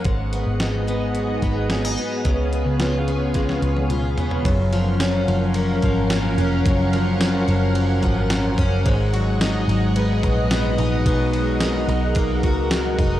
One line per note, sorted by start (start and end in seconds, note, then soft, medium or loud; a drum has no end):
0.00 0.11 F3 medium
0.00 0.11 A#3 medium
0.00 0.11 C#4 medium
0.00 2.22 F#5 medium
0.05 0.44 G#1 medium
0.05 2.25 G#2 medium
0.05 4.41 B3 medium
0.05 4.41 G#4 medium
0.05 2.23 D#5 medium
0.05 kick medium
0.05 closed hi-hat medium
0.33 0.87 B3 medium
0.33 closed hi-hat medium
0.47 1.39 G#1 medium
0.60 1.70 D#4 medium
0.60 snare loud
0.60 closed hi-hat medium
0.87 1.42 B3 soft
0.87 closed hi-hat soft
1.15 2.31 F#3 soft
1.15 closed hi-hat medium
1.42 1.95 G#1 medium
1.42 1.98 B3 medium
1.42 kick medium
1.42 closed hi-hat soft
1.70 1.85 C#4 medium
1.70 snare medium
1.70 closed hi-hat medium
1.85 2.31 D#4 medium
1.98 2.53 B3 soft
1.98 closed hi-hat soft
2.25 2.64 C#2 medium
2.25 4.46 C#3 medium
2.25 4.44 C#5 medium
2.25 4.44 F5 medium
2.25 kick medium
2.25 closed hi-hat medium
2.53 3.07 B3 medium
2.53 closed hi-hat soft
2.66 3.59 C#2 medium
2.80 3.90 F4 medium
2.80 snare medium
2.80 closed hi-hat medium
3.08 3.62 B3 soft
3.08 closed hi-hat soft
3.34 4.51 G#3 medium
3.34 kick medium
3.34 snare soft
3.34 closed hi-hat medium
3.49 snare soft
3.62 4.15 C#2 medium
3.62 4.17 B3 soft
3.62 closed hi-hat soft
3.77 high tom medium
3.90 5.01 F4 medium
3.90 closed hi-hat medium
3.90 mid tom medium
4.18 4.51 B3 soft
4.18 closed hi-hat soft
4.18 floor tom medium
4.31 floor tom medium
4.45 5.24 F#1 medium
4.45 6.65 F#2 medium
4.45 8.82 C#4 medium
4.45 8.82 A#4 medium
4.45 8.82 F5 medium
4.45 11.02 F#5 medium
4.45 kick loud
4.45 ride medium
4.73 5.27 F3 medium
4.73 ride soft
5.00 6.37 C#4 medium
5.00 snare loud
5.00 ride medium
5.00 tambourine medium
5.28 5.80 F#1 loud
5.28 5.82 F3 medium
5.28 ride soft
5.54 6.09 A#3 medium
5.54 ride medium
5.82 6.35 G#1 medium
5.82 6.92 F3 medium
5.82 kick medium
5.82 ride soft
6.10 7.74 A#3 medium
6.10 snare loud
6.10 ride medium
6.10 tambourine medium
6.38 6.64 F1 loud
6.38 7.20 C#4 medium
6.38 ride soft
6.66 7.44 F#1 medium
6.66 8.85 F#2 medium
6.66 kick loud
6.66 ride medium
6.93 7.46 F3 medium
6.93 ride medium
7.21 8.57 C#4 medium
7.21 snare loud
7.21 ride medium
7.21 tambourine medium
7.48 8.01 F#1 loud
7.48 8.02 F3 medium
7.48 ride soft
7.75 8.30 A#3 medium
7.75 ride medium
8.03 8.55 G#1 loud
8.03 8.91 F3 medium
8.03 kick medium
8.03 ride soft
8.30 8.91 A#3 medium
8.30 snare loud
8.30 ride medium
8.30 tambourine medium
8.58 8.84 F#1 loud
8.58 8.91 C#4 medium
8.58 kick medium
8.58 ride soft
8.86 9.64 G#1 loud
8.86 11.06 G#2 medium
8.86 13.20 G#3 medium
8.86 11.04 G#4 medium
8.86 13.20 D#5 medium
8.86 kick loud
8.86 ride medium
9.13 9.69 F#3 medium
9.13 ride soft
9.41 10.78 D#4 medium
9.41 snare loud
9.41 ride medium
9.41 tambourine medium
9.68 10.20 G#1 loud
9.68 10.23 F#3 medium
9.68 ride soft
9.96 10.51 B3 medium
9.96 ride medium
10.23 10.76 A#1 loud
10.23 11.33 F#3 medium
10.23 kick medium
10.23 ride soft
10.51 12.16 B3 medium
10.51 snare loud
10.51 ride medium
10.51 tambourine medium
10.78 11.05 A#1 loud
10.78 11.61 D#4 medium
10.78 ride soft
11.06 11.84 B1 medium
11.06 13.20 B2 medium
11.06 13.20 A#4 medium
11.06 13.20 F#5 medium
11.06 kick loud
11.06 ride medium
11.33 11.89 F#3 medium
11.33 ride soft
11.60 12.98 D#4 medium
11.60 snare loud
11.60 ride medium
11.60 tambourine medium
11.88 12.43 B1 loud
11.88 12.43 F#3 medium
11.88 ride soft
12.15 12.71 A#3 medium
12.15 kick loud
12.15 ride medium
12.43 12.96 C#2 loud
12.43 13.20 F#3 medium
12.43 kick medium
12.43 ride soft
12.71 13.20 A#3 medium
12.71 snare loud
12.71 ride medium
12.71 tambourine medium
12.99 13.20 F1 loud
12.99 13.20 D#4 medium
12.99 kick medium
12.99 ride soft